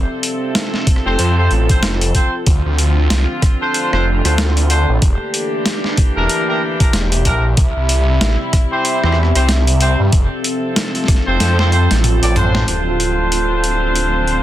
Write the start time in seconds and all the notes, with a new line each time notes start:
Already playing: F3 C4 F4 G4 A4 D5
0.13 C5
0.23 closed hi-hat
0.55 snare, closed hi-hat
0.74 snare
0.87 kick, closed hi-hat
0.96 cross-stick
1.06 F1 C4 F4 A4 C5 G5 A5
1.19 F2, closed hi-hat
1.38 C4 F4 A4 C5
1.51 A1, closed hi-hat
1.69 C4 F4 A4 C5, kick, closed hi-hat
1.83 F1, snare, closed hi-hat
2.01 closed hi-hat
2.15 C4 F4 A4 C5, kick, closed hi-hat
2.46 D2 D3 C4 D4 F4, kick, closed hi-hat
2.65 D2
2.78 closed hi-hat
3.06 A4
3.10 snare, closed hi-hat
3.42 kick, cross-stick, closed hi-hat
3.61 D4 F4 A4 C5 D5 F5
3.74 closed hi-hat
3.93 F1 D4 F4 A4 C5, cross-stick
4.25 D2 D4 F4 A4 C5, cross-stick, closed hi-hat
4.38 snare, closed hi-hat
4.57 closed hi-hat
4.70 D4 F4 A4 C5, closed hi-hat
4.89 A1
5.02 E3 A#3 D4 E4 G4, kick, closed hi-hat
5.34 E5, closed hi-hat
5.66 B5, snare, closed hi-hat
5.84 snare
5.97 kick, closed hi-hat
6.17 E1 D4 E4 G4 A#4 G5
6.29 closed hi-hat
6.48 D4 E4 G4 A#4
6.80 D4 E4 G4 A#4, kick, closed hi-hat
6.93 E1, snare, closed hi-hat
7.12 closed hi-hat
7.25 A#1 D4 E4 G4 A#4, kick, closed hi-hat
7.57 C2 C3 G3 C4 E4, kick, closed hi-hat
7.76 C2
7.89 closed hi-hat
8.10 G4
8.21 A1, snare, closed hi-hat
8.32 D5
8.53 kick, cross-stick, closed hi-hat
8.72 C4 E4 G4 C5
8.85 closed hi-hat
9.04 E2 C4 E4 G4 C5, cross-stick
9.12 cross-stick
9.23 cross-stick
9.35 C2 C4 E4 G4 C5, cross-stick, closed hi-hat
9.49 snare, closed hi-hat
9.67 closed hi-hat
9.81 C4 E4 G4 C5, closed hi-hat
10.00 G2
10.12 F1 F3 C4 F4 A4, kick, closed hi-hat
10.41 C5, closed hi-hat
10.76 snare, closed hi-hat
10.95 snare, closed hi-hat
11.04 snare
11.08 kick, cross-stick, closed hi-hat
11.15 snare
11.27 F1 C4 F4 A4 C5 G5 A5
11.40 F2, snare, closed hi-hat
11.59 C4 F4 A4 C5, snare
11.72 C4 F4 A4 C5, closed hi-hat
11.91 A1, snare, closed hi-hat
12.04 closed hi-hat, mid tom
12.23 A1 C4 F4 A4 D5, closed hi-hat
12.36 D4 F4 A4 C5, closed hi-hat, mid tom
12.55 snare
12.68 D1 D3 C4 D4 F4 A4 C5, closed hi-hat
13.00 closed hi-hat
13.32 closed hi-hat
13.64 closed hi-hat
13.70 D5
13.81 F5
13.96 closed hi-hat
14.27 closed hi-hat